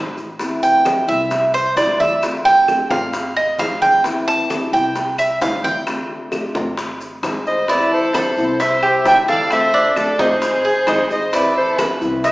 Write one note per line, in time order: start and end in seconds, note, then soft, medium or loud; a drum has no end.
0.00 1.02 A1 medium
0.17 high bongo soft
0.17 maracas soft
0.39 0.84 E3 medium
0.39 0.85 B3 medium
0.39 0.84 C4 medium
0.39 0.85 E4 medium
0.39 high bongo medium
0.39 high conga soft
0.39 maracas medium
0.63 1.05 G5 medium
0.63 high conga soft
0.63 maracas medium
0.85 1.07 E3 soft
0.85 1.08 B3 soft
0.85 1.07 C4 medium
0.85 1.06 E4 medium
0.85 high bongo medium
0.85 high conga medium
0.85 claves medium
0.85 maracas medium
1.08 1.72 C2 medium
1.08 1.31 B3 medium
1.08 1.30 C4 medium
1.08 1.30 E4 medium
1.08 1.51 E5 medium
1.08 high conga soft
1.08 maracas soft
1.31 muted nylon-string guitar stroke medium
1.31 high bongo medium
1.31 high conga soft
1.31 maracas medium
1.54 1.76 C5 loud
1.54 high conga soft
1.54 claves medium
1.54 maracas medium
1.76 2.84 D2 medium
1.76 2.21 E3 soft
1.76 2.22 G3 medium
1.76 2.22 C4 medium
1.76 2.22 E4 medium
1.76 1.99 D5 medium
1.76 high bongo medium
1.76 low bongo medium
1.76 high conga soft
1.76 maracas medium
2.00 2.22 E5 medium
2.00 high conga medium
2.00 maracas soft
2.22 2.66 D3 medium
2.22 2.67 A3 medium
2.22 2.67 C4 medium
2.22 2.68 F4 medium
2.22 high bongo medium
2.22 high conga soft
2.22 claves medium
2.22 maracas medium
2.45 2.88 G5 loud
2.45 high bongo soft
2.45 high conga soft
2.67 2.89 D3 soft
2.67 2.90 A3 medium
2.67 2.90 C4 medium
2.67 2.89 F4 medium
2.67 high bongo medium
2.67 high conga medium
2.67 claves medium
2.67 maracas medium
2.90 3.55 G#1 loud
2.90 3.13 A3 medium
2.90 3.13 C4 medium
2.90 3.12 F4 medium
2.90 3.33 F5 medium
2.90 high conga medium
2.90 maracas soft
3.13 muted nylon-string guitar stroke medium
3.13 high bongo medium
3.13 high conga soft
3.13 maracas medium
3.36 3.58 D#5 medium
3.36 high bongo soft
3.36 high conga soft
3.58 4.66 A1 medium
3.58 4.04 G#3 soft
3.58 4.04 C4 soft
3.58 4.04 D#4 medium
3.58 4.04 G#4 medium
3.58 3.81 F5 medium
3.58 high bongo medium
3.58 low bongo medium
3.58 high conga medium
3.58 claves medium
3.58 maracas medium
3.82 4.04 G5 medium
3.82 high bongo soft
3.82 high conga medium
3.82 maracas soft
4.04 4.48 E3 medium
4.04 4.50 B3 medium
4.04 4.49 C4 medium
4.04 4.50 E4 medium
4.04 high bongo medium
4.04 high conga soft
4.04 maracas medium
4.28 4.70 A5 loud
4.28 high conga soft
4.49 4.72 E3 medium
4.49 4.72 B3 medium
4.49 4.72 C4 medium
4.49 4.71 E4 medium
4.49 high bongo medium
4.49 high conga medium
4.49 claves medium
4.49 maracas medium
4.72 5.37 C2 medium
4.72 4.95 B3 medium
4.72 4.95 C4 medium
4.72 4.95 E4 medium
4.72 5.15 G5 medium
4.72 high conga soft
4.72 maracas soft
4.95 muted nylon-string guitar stroke medium
4.95 high bongo medium
4.95 high conga soft
4.95 maracas medium
5.18 5.41 E5 medium
5.18 high conga soft
5.18 claves medium
5.18 maracas medium
5.40 6.49 D2 medium
5.40 5.85 E3 soft
5.40 5.86 G3 medium
5.40 5.86 C4 medium
5.40 5.86 E4 medium
5.40 5.64 F5 medium
5.40 high bongo medium
5.40 low bongo medium
5.40 high conga soft
5.40 maracas medium
5.64 5.78 G5 loud
5.64 high conga medium
5.64 maracas soft
5.86 6.31 D3 medium
5.86 6.31 A3 medium
5.86 6.32 C4 medium
5.86 6.32 F4 medium
5.86 high bongo medium
5.86 high conga soft
5.86 claves medium
5.86 maracas medium
6.09 high bongo soft
6.09 high conga soft
6.32 6.54 D3 medium
6.32 6.54 A3 medium
6.32 6.55 C4 medium
6.32 6.53 F4 medium
6.32 high bongo medium
6.32 high conga medium
6.32 claves medium
6.32 maracas medium
6.55 7.19 G#1 medium
6.55 6.77 A3 medium
6.55 6.77 C4 medium
6.55 6.77 F4 medium
6.55 high conga medium
6.55 maracas soft
6.77 muted nylon-string guitar stroke medium
6.77 high bongo medium
6.77 high conga soft
6.77 maracas medium
7.00 high bongo soft
7.00 high conga soft
7.00 maracas medium
7.23 8.31 A1 medium
7.23 7.68 G#3 soft
7.23 7.68 C4 medium
7.23 7.69 D#4 medium
7.23 7.69 G#4 medium
7.23 high bongo medium
7.23 low bongo medium
7.23 high conga medium
7.23 claves medium
7.23 maracas medium
7.46 7.67 C5 medium
7.46 7.72 D#5 medium
7.46 high bongo soft
7.46 maracas soft
7.68 8.13 E3 medium
7.68 8.14 B3 medium
7.68 8.14 C4 medium
7.68 8.13 E4 medium
7.68 8.14 E4 medium
7.68 7.92 B4 medium
7.68 7.92 D5 medium
7.68 high bongo medium
7.68 high conga soft
7.68 maracas medium
7.91 8.56 A4 medium
7.91 8.63 C5 medium
7.91 high conga soft
8.14 8.36 E3 soft
8.14 8.37 B3 medium
8.14 8.37 C4 medium
8.14 8.37 E4 medium
8.14 8.59 B5 medium
8.14 high bongo medium
8.14 high conga medium
8.14 claves medium
8.14 maracas medium
8.37 9.01 C2 medium
8.37 8.60 B3 medium
8.37 8.60 C4 medium
8.37 8.59 E4 medium
8.37 high conga soft
8.37 maracas soft
8.60 9.05 C5 medium
8.60 8.82 E5 medium
8.60 9.06 E5 loud
8.60 muted nylon-string guitar stroke medium
8.60 high bongo medium
8.60 high conga soft
8.60 maracas medium
8.83 9.27 G4 medium
8.83 high conga soft
8.83 claves medium
9.05 10.13 D2 medium
9.05 9.50 E3 soft
9.05 9.51 G3 medium
9.05 9.51 C4 soft
9.05 9.51 E4 medium
9.05 9.17 E5 medium
9.05 9.17 G5 loud
9.05 high bongo medium
9.05 low bongo medium
9.05 high conga soft
9.05 maracas medium
9.28 9.72 A4 medium
9.28 9.50 D5 medium
9.28 9.50 F5 loud
9.28 high conga medium
9.28 maracas soft
9.50 9.95 D3 medium
9.50 9.95 A3 medium
9.50 9.96 C4 medium
9.50 9.96 F4 medium
9.50 9.94 C5 medium
9.50 9.99 E5 loud
9.50 high bongo medium
9.50 high conga soft
9.50 claves medium
9.50 maracas medium
9.74 10.18 D4 medium
9.74 high bongo soft
9.74 high conga soft
9.96 10.18 D3 medium
9.96 10.18 A3 medium
9.96 10.19 C4 medium
9.96 10.18 F4 medium
9.96 10.20 A4 medium
9.96 10.23 D5 medium
9.96 high bongo medium
9.96 high conga medium
9.96 claves medium
9.96 maracas medium
10.19 10.83 G#1 medium
10.19 10.42 A3 medium
10.19 10.41 C4 medium
10.19 10.63 D#4 medium
10.19 10.41 F4 medium
10.19 11.11 G#4 medium
10.19 11.11 C5 loud
10.19 high conga loud
10.19 maracas soft
10.42 muted nylon-string guitar stroke medium
10.42 high bongo medium
10.42 high conga soft
10.42 maracas medium
10.65 10.87 G#4 medium
10.65 high bongo soft
10.65 high conga soft
10.87 11.95 A1 medium
10.87 11.32 G#3 medium
10.87 11.33 C4 medium
10.87 11.32 D#4 medium
10.87 11.33 D#4 medium
10.87 11.33 G#4 medium
10.87 high bongo medium
10.87 low bongo medium
10.87 high conga medium
10.87 claves medium
10.87 maracas medium
11.10 11.32 C5 medium
11.10 11.37 D#5 medium
11.10 high bongo soft
11.10 maracas soft
11.33 11.77 E3 medium
11.33 11.78 B3 medium
11.33 11.78 C4 medium
11.33 11.77 E4 medium
11.33 11.78 E4 medium
11.33 11.57 B4 medium
11.33 11.57 D5 medium
11.33 high bongo medium
11.33 high conga soft
11.33 maracas medium
11.56 11.95 A4 medium
11.56 11.95 C5 medium
11.56 high conga soft
11.78 12.00 E3 medium
11.78 12.00 B3 medium
11.78 12.01 C4 medium
11.78 11.99 E4 medium
11.78 12.23 B4 medium
11.78 high bongo medium
11.78 high conga medium
11.78 claves medium
11.78 maracas medium
12.01 12.32 C2 loud
12.01 12.23 B3 medium
12.01 12.23 C4 medium
12.01 12.23 E4 medium
12.01 high conga soft
12.01 maracas soft
12.24 12.32 C5 medium
12.24 12.32 E5 medium
12.24 12.32 E5 loud
12.24 muted nylon-string guitar stroke medium
12.24 high bongo medium
12.24 high conga soft
12.24 maracas medium